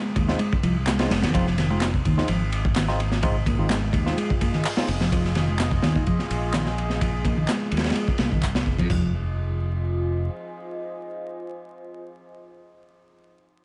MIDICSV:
0, 0, Header, 1, 6, 480
1, 0, Start_track
1, 0, Key_signature, -4, "minor"
1, 0, Tempo, 472441
1, 1361, Time_signature, 4, 2, 24, 8
1, 13865, End_track
2, 0, Start_track
2, 0, Title_t, "Ambient pad"
2, 0, Program_c, 0, 92
2, 1363, Note_on_c, 0, 65, 79
2, 1363, Note_on_c, 0, 68, 74
2, 1364, Note_on_c, 0, 75, 90
2, 9001, Note_off_c, 0, 65, 0
2, 9002, Note_off_c, 0, 68, 0
2, 9002, Note_off_c, 0, 75, 0
2, 9050, Note_on_c, 0, 65, 78
2, 9050, Note_on_c, 0, 72, 73
2, 9050, Note_on_c, 0, 75, 72
2, 9051, Note_on_c, 0, 80, 86
2, 13334, Note_off_c, 0, 65, 0
2, 13335, Note_off_c, 0, 72, 0
2, 13335, Note_off_c, 0, 75, 0
2, 13336, Note_off_c, 0, 80, 0
2, 13865, End_track
3, 0, Start_track
3, 0, Title_t, "Tine electric piano"
3, 0, Program_c, 1, 4
3, 288, Note_on_c, 1, 56, 80
3, 288, Note_on_c, 1, 60, 73
3, 288, Note_on_c, 1, 63, 74
3, 289, Note_on_c, 1, 65, 89
3, 395, Note_off_c, 1, 56, 0
3, 395, Note_off_c, 1, 60, 0
3, 395, Note_off_c, 1, 63, 0
3, 396, Note_off_c, 1, 65, 0
3, 1009, Note_on_c, 1, 56, 92
3, 1009, Note_on_c, 1, 60, 79
3, 1009, Note_on_c, 1, 65, 102
3, 1010, Note_on_c, 1, 63, 82
3, 1116, Note_off_c, 1, 56, 0
3, 1116, Note_off_c, 1, 60, 0
3, 1116, Note_off_c, 1, 63, 0
3, 1116, Note_off_c, 1, 65, 0
3, 1364, Note_on_c, 1, 56, 88
3, 1364, Note_on_c, 1, 60, 83
3, 1364, Note_on_c, 1, 63, 83
3, 1364, Note_on_c, 1, 65, 99
3, 1483, Note_off_c, 1, 56, 0
3, 1483, Note_off_c, 1, 60, 0
3, 1484, Note_off_c, 1, 63, 0
3, 1484, Note_off_c, 1, 65, 0
3, 1730, Note_on_c, 1, 56, 70
3, 1730, Note_on_c, 1, 60, 67
3, 1730, Note_on_c, 1, 63, 65
3, 1730, Note_on_c, 1, 65, 81
3, 1908, Note_off_c, 1, 56, 0
3, 1908, Note_off_c, 1, 60, 0
3, 1908, Note_off_c, 1, 63, 0
3, 1908, Note_off_c, 1, 65, 0
3, 2211, Note_on_c, 1, 56, 77
3, 2211, Note_on_c, 1, 60, 69
3, 2211, Note_on_c, 1, 65, 84
3, 2212, Note_on_c, 1, 63, 69
3, 2317, Note_off_c, 1, 56, 0
3, 2317, Note_off_c, 1, 60, 0
3, 2317, Note_off_c, 1, 63, 0
3, 2317, Note_off_c, 1, 65, 0
3, 2928, Note_on_c, 1, 60, 79
3, 2929, Note_on_c, 1, 56, 85
3, 2929, Note_on_c, 1, 63, 80
3, 2929, Note_on_c, 1, 65, 97
3, 3035, Note_off_c, 1, 60, 0
3, 3036, Note_off_c, 1, 56, 0
3, 3036, Note_off_c, 1, 63, 0
3, 3036, Note_off_c, 1, 65, 0
3, 3279, Note_on_c, 1, 65, 99
3, 3280, Note_on_c, 1, 56, 89
3, 3280, Note_on_c, 1, 60, 83
3, 3280, Note_on_c, 1, 63, 83
3, 3401, Note_off_c, 1, 60, 0
3, 3401, Note_off_c, 1, 63, 0
3, 3401, Note_off_c, 1, 65, 0
3, 3402, Note_off_c, 1, 56, 0
3, 3647, Note_on_c, 1, 56, 74
3, 3647, Note_on_c, 1, 60, 66
3, 3647, Note_on_c, 1, 63, 66
3, 3647, Note_on_c, 1, 65, 78
3, 3826, Note_off_c, 1, 56, 0
3, 3826, Note_off_c, 1, 60, 0
3, 3826, Note_off_c, 1, 63, 0
3, 3827, Note_off_c, 1, 65, 0
3, 4126, Note_on_c, 1, 56, 79
3, 4126, Note_on_c, 1, 60, 70
3, 4126, Note_on_c, 1, 63, 72
3, 4126, Note_on_c, 1, 65, 85
3, 4234, Note_off_c, 1, 56, 0
3, 4234, Note_off_c, 1, 60, 0
3, 4234, Note_off_c, 1, 63, 0
3, 4234, Note_off_c, 1, 65, 0
3, 4846, Note_on_c, 1, 56, 87
3, 4846, Note_on_c, 1, 63, 80
3, 4847, Note_on_c, 1, 60, 79
3, 4847, Note_on_c, 1, 65, 98
3, 4954, Note_off_c, 1, 56, 0
3, 4954, Note_off_c, 1, 63, 0
3, 4955, Note_off_c, 1, 60, 0
3, 4955, Note_off_c, 1, 65, 0
3, 13865, End_track
4, 0, Start_track
4, 0, Title_t, "Picked electric bass"
4, 0, Program_c, 2, 34
4, 0, Note_on_c, 2, 56, 84
4, 389, Note_off_c, 2, 56, 0
4, 400, Note_on_c, 2, 56, 84
4, 522, Note_off_c, 2, 56, 0
4, 641, Note_on_c, 2, 53, 106
4, 753, Note_off_c, 2, 53, 0
4, 882, Note_on_c, 2, 56, 82
4, 993, Note_off_c, 2, 56, 0
4, 1124, Note_on_c, 2, 56, 102
4, 1235, Note_off_c, 2, 56, 0
4, 1252, Note_on_c, 2, 51, 78
4, 1352, Note_off_c, 2, 51, 0
4, 1364, Note_on_c, 2, 53, 96
4, 1591, Note_off_c, 2, 53, 0
4, 1603, Note_on_c, 2, 51, 95
4, 1717, Note_off_c, 2, 51, 0
4, 1732, Note_on_c, 2, 56, 75
4, 1829, Note_off_c, 2, 56, 0
4, 2084, Note_on_c, 2, 51, 75
4, 2194, Note_off_c, 2, 51, 0
4, 2210, Note_on_c, 2, 63, 99
4, 2308, Note_off_c, 2, 63, 0
4, 2323, Note_on_c, 2, 53, 84
4, 2443, Note_off_c, 2, 53, 0
4, 2803, Note_on_c, 2, 51, 97
4, 2923, Note_off_c, 2, 51, 0
4, 3523, Note_on_c, 2, 58, 72
4, 3634, Note_off_c, 2, 58, 0
4, 3647, Note_on_c, 2, 51, 99
4, 3755, Note_off_c, 2, 51, 0
4, 3760, Note_on_c, 2, 56, 81
4, 4230, Note_off_c, 2, 56, 0
4, 4240, Note_on_c, 2, 56, 80
4, 4361, Note_off_c, 2, 56, 0
4, 4481, Note_on_c, 2, 58, 76
4, 4593, Note_off_c, 2, 58, 0
4, 4609, Note_on_c, 2, 51, 95
4, 4716, Note_off_c, 2, 51, 0
4, 5090, Note_on_c, 2, 53, 100
4, 5188, Note_off_c, 2, 53, 0
4, 5204, Note_on_c, 2, 53, 99
4, 5431, Note_off_c, 2, 53, 0
4, 5443, Note_on_c, 2, 51, 97
4, 5557, Note_off_c, 2, 51, 0
4, 5571, Note_on_c, 2, 56, 75
4, 5668, Note_off_c, 2, 56, 0
4, 5923, Note_on_c, 2, 51, 76
4, 6034, Note_off_c, 2, 51, 0
4, 6050, Note_on_c, 2, 63, 97
4, 6148, Note_off_c, 2, 63, 0
4, 6166, Note_on_c, 2, 53, 81
4, 6285, Note_off_c, 2, 53, 0
4, 6644, Note_on_c, 2, 51, 95
4, 6763, Note_off_c, 2, 51, 0
4, 7363, Note_on_c, 2, 58, 70
4, 7474, Note_off_c, 2, 58, 0
4, 7488, Note_on_c, 2, 51, 96
4, 7596, Note_off_c, 2, 51, 0
4, 7602, Note_on_c, 2, 56, 79
4, 8071, Note_off_c, 2, 56, 0
4, 8081, Note_on_c, 2, 56, 80
4, 8202, Note_off_c, 2, 56, 0
4, 8321, Note_on_c, 2, 58, 71
4, 8433, Note_off_c, 2, 58, 0
4, 8449, Note_on_c, 2, 51, 90
4, 8556, Note_off_c, 2, 51, 0
4, 8928, Note_on_c, 2, 53, 93
4, 9027, Note_off_c, 2, 53, 0
4, 9041, Note_on_c, 2, 53, 86
4, 9264, Note_off_c, 2, 53, 0
4, 13865, End_track
5, 0, Start_track
5, 0, Title_t, "Fingered electric bass"
5, 0, Program_c, 3, 33
5, 162, Note_on_c, 3, 39, 85
5, 351, Note_off_c, 3, 39, 0
5, 642, Note_on_c, 3, 36, 97
5, 1081, Note_off_c, 3, 36, 0
5, 1124, Note_on_c, 3, 29, 97
5, 1252, Note_on_c, 3, 41, 99
5, 1267, Note_off_c, 3, 29, 0
5, 1337, Note_off_c, 3, 41, 0
5, 1362, Note_on_c, 3, 29, 96
5, 2041, Note_off_c, 3, 29, 0
5, 2087, Note_on_c, 3, 39, 81
5, 2273, Note_off_c, 3, 39, 0
5, 2323, Note_on_c, 3, 32, 91
5, 3961, Note_off_c, 3, 32, 0
5, 3993, Note_on_c, 3, 39, 81
5, 4186, Note_off_c, 3, 39, 0
5, 4962, Note_on_c, 3, 29, 91
5, 5881, Note_off_c, 3, 29, 0
5, 5925, Note_on_c, 3, 39, 78
5, 6112, Note_off_c, 3, 39, 0
5, 6405, Note_on_c, 3, 34, 77
5, 7562, Note_off_c, 3, 34, 0
5, 7844, Note_on_c, 3, 39, 77
5, 8031, Note_off_c, 3, 39, 0
5, 8326, Note_on_c, 3, 36, 90
5, 8763, Note_off_c, 3, 36, 0
5, 8799, Note_on_c, 3, 29, 91
5, 8927, Note_on_c, 3, 41, 91
5, 8942, Note_off_c, 3, 29, 0
5, 9015, Note_off_c, 3, 41, 0
5, 9041, Note_on_c, 3, 29, 89
5, 10441, Note_off_c, 3, 29, 0
5, 13865, End_track
6, 0, Start_track
6, 0, Title_t, "Drums"
6, 162, Note_on_c, 9, 36, 101
6, 162, Note_on_c, 9, 51, 68
6, 264, Note_off_c, 9, 36, 0
6, 264, Note_off_c, 9, 51, 0
6, 288, Note_on_c, 9, 38, 49
6, 389, Note_off_c, 9, 38, 0
6, 397, Note_on_c, 9, 51, 81
6, 499, Note_off_c, 9, 51, 0
6, 535, Note_on_c, 9, 36, 100
6, 636, Note_off_c, 9, 36, 0
6, 643, Note_on_c, 9, 51, 69
6, 745, Note_off_c, 9, 51, 0
6, 881, Note_on_c, 9, 39, 110
6, 886, Note_on_c, 9, 38, 98
6, 886, Note_on_c, 9, 51, 77
6, 983, Note_off_c, 9, 39, 0
6, 987, Note_off_c, 9, 51, 0
6, 988, Note_off_c, 9, 38, 0
6, 1005, Note_on_c, 9, 51, 73
6, 1011, Note_on_c, 9, 38, 108
6, 1107, Note_off_c, 9, 51, 0
6, 1112, Note_off_c, 9, 38, 0
6, 1121, Note_on_c, 9, 38, 97
6, 1129, Note_on_c, 9, 51, 88
6, 1222, Note_off_c, 9, 38, 0
6, 1231, Note_off_c, 9, 51, 0
6, 1244, Note_on_c, 9, 38, 107
6, 1253, Note_on_c, 9, 51, 82
6, 1346, Note_off_c, 9, 38, 0
6, 1354, Note_off_c, 9, 51, 0
6, 1362, Note_on_c, 9, 36, 107
6, 1367, Note_on_c, 9, 51, 90
6, 1463, Note_off_c, 9, 36, 0
6, 1469, Note_off_c, 9, 51, 0
6, 1492, Note_on_c, 9, 38, 33
6, 1594, Note_off_c, 9, 38, 0
6, 1604, Note_on_c, 9, 51, 73
6, 1612, Note_on_c, 9, 38, 45
6, 1705, Note_off_c, 9, 51, 0
6, 1713, Note_off_c, 9, 38, 0
6, 1841, Note_on_c, 9, 39, 106
6, 1844, Note_on_c, 9, 38, 111
6, 1848, Note_on_c, 9, 51, 79
6, 1943, Note_off_c, 9, 39, 0
6, 1946, Note_off_c, 9, 38, 0
6, 1950, Note_off_c, 9, 51, 0
6, 1970, Note_on_c, 9, 36, 83
6, 2072, Note_off_c, 9, 36, 0
6, 2085, Note_on_c, 9, 51, 70
6, 2086, Note_on_c, 9, 36, 91
6, 2187, Note_off_c, 9, 51, 0
6, 2188, Note_off_c, 9, 36, 0
6, 2214, Note_on_c, 9, 38, 44
6, 2316, Note_off_c, 9, 38, 0
6, 2316, Note_on_c, 9, 51, 92
6, 2417, Note_off_c, 9, 51, 0
6, 2564, Note_on_c, 9, 51, 74
6, 2666, Note_off_c, 9, 51, 0
6, 2692, Note_on_c, 9, 36, 102
6, 2793, Note_off_c, 9, 36, 0
6, 2799, Note_on_c, 9, 39, 109
6, 2804, Note_on_c, 9, 51, 94
6, 2805, Note_on_c, 9, 38, 117
6, 2901, Note_off_c, 9, 39, 0
6, 2906, Note_off_c, 9, 51, 0
6, 2907, Note_off_c, 9, 38, 0
6, 2928, Note_on_c, 9, 38, 46
6, 3029, Note_off_c, 9, 38, 0
6, 3046, Note_on_c, 9, 51, 68
6, 3148, Note_off_c, 9, 51, 0
6, 3164, Note_on_c, 9, 38, 53
6, 3266, Note_off_c, 9, 38, 0
6, 3277, Note_on_c, 9, 51, 85
6, 3285, Note_on_c, 9, 36, 115
6, 3379, Note_off_c, 9, 51, 0
6, 3387, Note_off_c, 9, 36, 0
6, 3519, Note_on_c, 9, 36, 94
6, 3520, Note_on_c, 9, 51, 68
6, 3620, Note_off_c, 9, 36, 0
6, 3622, Note_off_c, 9, 51, 0
6, 3758, Note_on_c, 9, 38, 104
6, 3761, Note_on_c, 9, 39, 110
6, 3766, Note_on_c, 9, 51, 79
6, 3859, Note_off_c, 9, 38, 0
6, 3862, Note_off_c, 9, 39, 0
6, 3868, Note_off_c, 9, 51, 0
6, 3993, Note_on_c, 9, 36, 85
6, 3999, Note_on_c, 9, 51, 73
6, 4095, Note_off_c, 9, 36, 0
6, 4101, Note_off_c, 9, 51, 0
6, 4132, Note_on_c, 9, 38, 49
6, 4233, Note_off_c, 9, 38, 0
6, 4245, Note_on_c, 9, 51, 82
6, 4347, Note_off_c, 9, 51, 0
6, 4372, Note_on_c, 9, 36, 91
6, 4474, Note_off_c, 9, 36, 0
6, 4482, Note_on_c, 9, 36, 99
6, 4482, Note_on_c, 9, 51, 81
6, 4583, Note_off_c, 9, 51, 0
6, 4584, Note_off_c, 9, 36, 0
6, 4605, Note_on_c, 9, 38, 32
6, 4706, Note_off_c, 9, 38, 0
6, 4720, Note_on_c, 9, 39, 110
6, 4730, Note_on_c, 9, 46, 81
6, 4822, Note_off_c, 9, 39, 0
6, 4832, Note_off_c, 9, 46, 0
6, 4845, Note_on_c, 9, 38, 99
6, 4947, Note_off_c, 9, 38, 0
6, 4959, Note_on_c, 9, 51, 70
6, 5061, Note_off_c, 9, 51, 0
6, 5087, Note_on_c, 9, 38, 56
6, 5188, Note_off_c, 9, 38, 0
6, 5204, Note_on_c, 9, 36, 110
6, 5206, Note_on_c, 9, 51, 87
6, 5306, Note_off_c, 9, 36, 0
6, 5308, Note_off_c, 9, 51, 0
6, 5333, Note_on_c, 9, 38, 35
6, 5434, Note_off_c, 9, 38, 0
6, 5437, Note_on_c, 9, 51, 68
6, 5443, Note_on_c, 9, 38, 52
6, 5539, Note_off_c, 9, 51, 0
6, 5545, Note_off_c, 9, 38, 0
6, 5679, Note_on_c, 9, 39, 110
6, 5689, Note_on_c, 9, 38, 104
6, 5689, Note_on_c, 9, 51, 89
6, 5781, Note_off_c, 9, 39, 0
6, 5791, Note_off_c, 9, 38, 0
6, 5791, Note_off_c, 9, 51, 0
6, 5806, Note_on_c, 9, 36, 99
6, 5908, Note_off_c, 9, 36, 0
6, 5918, Note_on_c, 9, 38, 103
6, 5929, Note_on_c, 9, 51, 78
6, 6019, Note_off_c, 9, 38, 0
6, 6030, Note_off_c, 9, 51, 0
6, 6052, Note_on_c, 9, 36, 80
6, 6154, Note_off_c, 9, 36, 0
6, 6162, Note_on_c, 9, 51, 60
6, 6168, Note_on_c, 9, 36, 83
6, 6264, Note_off_c, 9, 51, 0
6, 6269, Note_off_c, 9, 36, 0
6, 6290, Note_on_c, 9, 38, 37
6, 6392, Note_off_c, 9, 38, 0
6, 6406, Note_on_c, 9, 51, 83
6, 6508, Note_off_c, 9, 51, 0
6, 6640, Note_on_c, 9, 39, 114
6, 6641, Note_on_c, 9, 38, 110
6, 6645, Note_on_c, 9, 51, 84
6, 6741, Note_off_c, 9, 39, 0
6, 6742, Note_off_c, 9, 38, 0
6, 6747, Note_off_c, 9, 51, 0
6, 6767, Note_on_c, 9, 38, 52
6, 6868, Note_off_c, 9, 38, 0
6, 6890, Note_on_c, 9, 51, 62
6, 6991, Note_off_c, 9, 51, 0
6, 7009, Note_on_c, 9, 38, 45
6, 7110, Note_off_c, 9, 38, 0
6, 7125, Note_on_c, 9, 36, 101
6, 7125, Note_on_c, 9, 51, 84
6, 7226, Note_off_c, 9, 51, 0
6, 7227, Note_off_c, 9, 36, 0
6, 7363, Note_on_c, 9, 36, 96
6, 7366, Note_on_c, 9, 51, 70
6, 7464, Note_off_c, 9, 36, 0
6, 7468, Note_off_c, 9, 51, 0
6, 7600, Note_on_c, 9, 39, 101
6, 7604, Note_on_c, 9, 51, 83
6, 7607, Note_on_c, 9, 38, 104
6, 7702, Note_off_c, 9, 39, 0
6, 7706, Note_off_c, 9, 51, 0
6, 7708, Note_off_c, 9, 38, 0
6, 7839, Note_on_c, 9, 51, 66
6, 7894, Note_off_c, 9, 51, 0
6, 7894, Note_on_c, 9, 51, 64
6, 7903, Note_on_c, 9, 38, 88
6, 7967, Note_off_c, 9, 51, 0
6, 7967, Note_on_c, 9, 51, 63
6, 7971, Note_off_c, 9, 38, 0
6, 7971, Note_on_c, 9, 38, 82
6, 8027, Note_off_c, 9, 51, 0
6, 8027, Note_on_c, 9, 51, 61
6, 8036, Note_off_c, 9, 38, 0
6, 8036, Note_on_c, 9, 38, 86
6, 8082, Note_off_c, 9, 51, 0
6, 8082, Note_on_c, 9, 51, 87
6, 8138, Note_off_c, 9, 38, 0
6, 8183, Note_off_c, 9, 51, 0
6, 8207, Note_on_c, 9, 36, 91
6, 8309, Note_off_c, 9, 36, 0
6, 8309, Note_on_c, 9, 51, 73
6, 8317, Note_on_c, 9, 38, 89
6, 8411, Note_off_c, 9, 51, 0
6, 8419, Note_off_c, 9, 38, 0
6, 8451, Note_on_c, 9, 36, 74
6, 8552, Note_off_c, 9, 36, 0
6, 8561, Note_on_c, 9, 39, 107
6, 8565, Note_on_c, 9, 51, 57
6, 8567, Note_on_c, 9, 36, 76
6, 8662, Note_off_c, 9, 39, 0
6, 8666, Note_off_c, 9, 51, 0
6, 8668, Note_off_c, 9, 36, 0
6, 8686, Note_on_c, 9, 38, 100
6, 8692, Note_on_c, 9, 51, 76
6, 8788, Note_off_c, 9, 38, 0
6, 8794, Note_off_c, 9, 51, 0
6, 8799, Note_on_c, 9, 36, 76
6, 8901, Note_off_c, 9, 36, 0
6, 8926, Note_on_c, 9, 36, 84
6, 8932, Note_on_c, 9, 51, 56
6, 9027, Note_off_c, 9, 36, 0
6, 9034, Note_off_c, 9, 51, 0
6, 9041, Note_on_c, 9, 36, 101
6, 9042, Note_on_c, 9, 43, 102
6, 9042, Note_on_c, 9, 55, 84
6, 9143, Note_off_c, 9, 36, 0
6, 9143, Note_off_c, 9, 43, 0
6, 9143, Note_off_c, 9, 55, 0
6, 13865, End_track
0, 0, End_of_file